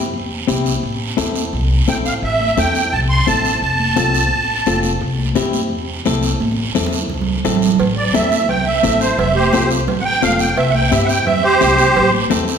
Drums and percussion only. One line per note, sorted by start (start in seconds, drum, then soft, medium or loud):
0.14 high conga soft
0.14 long guiro medium
0.48 high conga medium
0.48 short guiro medium
0.66 short guiro medium
0.83 high conga soft
0.83 long guiro medium
1.18 high conga medium
1.18 short guiro medium
1.36 high conga medium
1.36 short guiro medium
1.53 high conga soft
1.53 long guiro medium
1.88 high conga medium
1.88 short guiro medium
2.06 short guiro medium
2.23 high conga soft
2.23 long guiro medium
2.40 high conga medium
2.58 high conga medium
2.58 short guiro medium
2.75 short guiro medium
2.92 long guiro medium
3.27 high conga medium
3.27 short guiro medium
3.45 short guiro medium
3.62 high conga soft
3.62 long guiro medium
3.79 high conga medium
3.97 high conga loud
3.97 short guiro medium
4.15 short guiro medium
4.32 high conga soft
4.32 long guiro medium
4.66 high conga medium
4.66 short guiro medium
4.83 short guiro medium
5.01 high conga soft
5.01 long guiro medium
5.18 high conga medium
5.36 high conga loud
5.36 short guiro medium
5.53 high conga medium
5.53 short guiro medium
5.71 high conga soft
5.71 long guiro medium
6.05 high conga medium
6.05 short guiro medium
6.23 short guiro medium
6.40 high conga medium
6.40 long guiro medium
6.52 high conga medium
6.75 high conga medium
6.75 short guiro medium
6.86 low conga medium
6.93 short guiro medium
7.10 low conga medium
7.10 long guiro medium
7.21 low conga medium
7.45 low conga medium
7.45 short guiro medium
7.56 low conga loud
7.62 short guiro medium
7.68 low conga medium
7.79 cowbell loud
7.79 high conga soft
7.79 long guiro medium
8.14 high conga loud
8.14 short guiro medium
8.31 high conga medium
8.31 short guiro medium
8.49 cowbell medium
8.49 high conga soft
8.49 low conga medium
8.49 long guiro medium
8.84 high conga medium
8.84 short guiro medium
9.01 short guiro medium
9.18 cowbell loud
9.18 high conga soft
9.18 low conga medium
9.18 long guiro medium
9.35 high conga medium
9.53 high conga loud
9.53 short guiro medium
9.71 short guiro medium
9.88 cowbell medium
9.88 high conga soft
9.88 low conga medium
9.88 long guiro medium
10.22 high conga medium
10.22 low timbale medium
10.22 short guiro medium
10.39 short guiro medium
10.57 cowbell loud
10.57 high conga soft
10.57 long guiro medium
10.74 high conga medium
10.92 high conga medium
10.92 short guiro medium
11.09 short guiro medium
11.27 cowbell medium
11.27 high conga soft
11.27 low conga medium
11.27 long guiro medium
11.61 high conga medium
11.61 low timbale medium
11.61 short guiro medium
11.79 short guiro medium
11.96 cowbell loud
11.96 high conga soft
11.96 low conga medium
11.96 long guiro medium
12.14 high conga medium
12.31 high conga loud
12.31 short guiro medium
12.48 short guiro medium